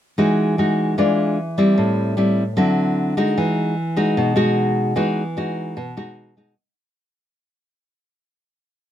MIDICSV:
0, 0, Header, 1, 2, 480
1, 0, Start_track
1, 0, Key_signature, 4, "major"
1, 0, Tempo, 398671
1, 213, Time_signature, 4, 2, 24, 8
1, 10728, End_track
2, 0, Start_track
2, 0, Title_t, "Nylon-string guitar"
2, 0, Program_c, 0, 24
2, 214, Note_on_c, 0, 56, 55
2, 215, Note_on_c, 0, 52, 73
2, 222, Note_on_c, 0, 63, 58
2, 227, Note_on_c, 0, 66, 65
2, 654, Note_off_c, 0, 56, 0
2, 659, Note_off_c, 0, 63, 0
2, 661, Note_off_c, 0, 66, 0
2, 700, Note_on_c, 0, 56, 53
2, 710, Note_on_c, 0, 66, 54
2, 712, Note_on_c, 0, 63, 48
2, 1139, Note_off_c, 0, 56, 0
2, 1141, Note_off_c, 0, 63, 0
2, 1143, Note_off_c, 0, 66, 0
2, 1149, Note_off_c, 0, 52, 0
2, 1176, Note_on_c, 0, 52, 69
2, 1182, Note_on_c, 0, 56, 59
2, 1187, Note_on_c, 0, 62, 63
2, 1189, Note_on_c, 0, 65, 62
2, 1653, Note_off_c, 0, 56, 0
2, 1653, Note_off_c, 0, 62, 0
2, 1658, Note_off_c, 0, 65, 0
2, 1900, Note_on_c, 0, 55, 61
2, 1907, Note_on_c, 0, 60, 64
2, 1911, Note_on_c, 0, 64, 67
2, 2112, Note_off_c, 0, 52, 0
2, 2140, Note_on_c, 0, 45, 72
2, 2577, Note_off_c, 0, 55, 0
2, 2581, Note_off_c, 0, 60, 0
2, 2582, Note_off_c, 0, 64, 0
2, 2612, Note_on_c, 0, 55, 52
2, 2618, Note_on_c, 0, 60, 48
2, 2621, Note_on_c, 0, 64, 59
2, 2921, Note_off_c, 0, 55, 0
2, 2925, Note_off_c, 0, 60, 0
2, 2925, Note_off_c, 0, 64, 0
2, 3072, Note_off_c, 0, 45, 0
2, 3091, Note_on_c, 0, 54, 59
2, 3092, Note_on_c, 0, 50, 68
2, 3101, Note_on_c, 0, 60, 56
2, 3107, Note_on_c, 0, 64, 66
2, 3773, Note_off_c, 0, 54, 0
2, 3779, Note_off_c, 0, 60, 0
2, 3781, Note_off_c, 0, 64, 0
2, 3818, Note_on_c, 0, 56, 64
2, 3823, Note_on_c, 0, 63, 64
2, 3829, Note_on_c, 0, 66, 68
2, 4030, Note_off_c, 0, 50, 0
2, 4065, Note_on_c, 0, 52, 77
2, 4498, Note_off_c, 0, 56, 0
2, 4500, Note_off_c, 0, 63, 0
2, 4503, Note_off_c, 0, 66, 0
2, 4774, Note_on_c, 0, 56, 55
2, 4779, Note_on_c, 0, 63, 63
2, 4782, Note_on_c, 0, 66, 67
2, 4996, Note_off_c, 0, 52, 0
2, 5023, Note_on_c, 0, 47, 77
2, 5217, Note_off_c, 0, 56, 0
2, 5218, Note_off_c, 0, 63, 0
2, 5219, Note_off_c, 0, 66, 0
2, 5246, Note_on_c, 0, 56, 67
2, 5252, Note_on_c, 0, 63, 58
2, 5256, Note_on_c, 0, 66, 75
2, 5933, Note_off_c, 0, 56, 0
2, 5935, Note_off_c, 0, 63, 0
2, 5938, Note_off_c, 0, 66, 0
2, 5955, Note_off_c, 0, 47, 0
2, 5969, Note_on_c, 0, 52, 74
2, 5974, Note_on_c, 0, 56, 54
2, 5977, Note_on_c, 0, 63, 59
2, 5983, Note_on_c, 0, 66, 64
2, 6282, Note_off_c, 0, 56, 0
2, 6286, Note_off_c, 0, 66, 0
2, 6287, Note_off_c, 0, 63, 0
2, 6463, Note_on_c, 0, 56, 52
2, 6471, Note_on_c, 0, 63, 51
2, 6472, Note_on_c, 0, 66, 52
2, 6909, Note_off_c, 0, 52, 0
2, 6938, Note_off_c, 0, 56, 0
2, 6938, Note_off_c, 0, 63, 0
2, 6941, Note_off_c, 0, 66, 0
2, 6944, Note_on_c, 0, 47, 72
2, 7185, Note_on_c, 0, 56, 58
2, 7192, Note_on_c, 0, 63, 60
2, 7192, Note_on_c, 0, 66, 72
2, 7623, Note_off_c, 0, 56, 0
2, 7624, Note_off_c, 0, 63, 0
2, 7626, Note_off_c, 0, 66, 0
2, 7669, Note_on_c, 0, 56, 53
2, 7676, Note_on_c, 0, 63, 58
2, 7682, Note_on_c, 0, 66, 63
2, 7865, Note_off_c, 0, 56, 0
2, 7865, Note_off_c, 0, 63, 0
2, 7870, Note_off_c, 0, 66, 0
2, 7876, Note_off_c, 0, 47, 0
2, 10728, End_track
0, 0, End_of_file